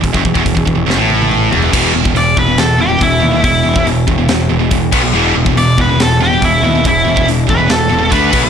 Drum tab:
CC |----------------|x---------------|--------------x-|----------------|
HH |o---o-----------|----o---o---o---|o---o---o---o---|----o---o---o---|
SD |--------o-------|--------o-------|--------o-------|--------o-------|
T1 |----------oo----|----------------|----------------|----------------|
T2 |------------o---|----------------|----------------|----------------|
FT |--------------oo|----------------|----------------|----------------|
BD |ooooooo---------|o--o--o-----o---|o--o--o-----o-o-|---o--o-----o---|

CC |--------------x-|
HH |o---o---o---o---|
SD |--------o-------|
T1 |----------------|
T2 |----------------|
FT |----------------|
BD |o--o--o-----o-o-|